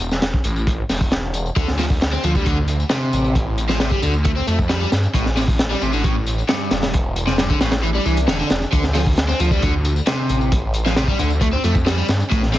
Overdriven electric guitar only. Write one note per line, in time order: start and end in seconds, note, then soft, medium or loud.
1.56 1.67 D3 medium
1.79 1.84 F3 medium
2.13 2.23 C4 medium
2.24 2.33 F3 medium
2.35 2.45 G3 medium
2.46 2.57 D3 medium
2.91 3.34 C3 medium
3.69 3.78 F3 medium
3.80 3.91 C3 medium
3.92 4.00 G3 medium
4.03 4.14 D3 loud
4.25 4.30 A3 medium
4.36 4.45 C4 medium
4.47 4.58 A3 medium
4.70 4.80 G3 medium
4.81 4.90 G3 loud
5.15 5.26 A2 medium
5.37 5.42 C3 medium
5.71 5.81 G3 medium
5.82 5.91 C3 medium
5.93 6.03 D3 medium
6.04 6.15 A2 medium
6.49 6.93 G2 medium
7.27 7.36 C3 medium
7.38 7.49 G2 medium
7.50 7.58 D3 loud
7.60 7.72 A2 loud
7.83 7.88 E3 medium
7.94 8.03 G3 medium
8.06 8.16 E3 medium
8.28 8.38 D3 medium
8.39 8.48 D3 medium
8.73 8.84 D3 medium
8.95 9.01 F3 loud
9.29 9.39 C4 medium
9.40 9.49 F3 medium
9.52 9.62 G3 medium
9.62 9.73 D3 medium
10.07 10.51 C3 medium
10.86 10.94 F3 medium
10.97 11.07 C3 medium
11.08 11.17 G3 loud
11.19 11.30 D3 loud
11.41 11.47 A3 medium
11.53 11.61 C4 medium
11.64 11.75 A3 medium
11.86 11.97 G3 medium
11.98 12.06 G3 loud
12.31 12.42 A2 medium
12.53 12.59 C3 medium